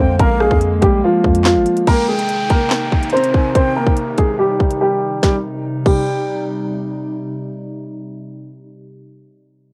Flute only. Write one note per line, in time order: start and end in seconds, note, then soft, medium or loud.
0.00 0.18 G5 medium
0.20 0.59 F5 loud
1.87 3.09 G5 loud
3.13 3.33 A#5 medium
3.34 3.54 G#5 medium
3.55 3.95 G5 loud
5.23 5.35 G5 medium
5.86 6.45 G5 medium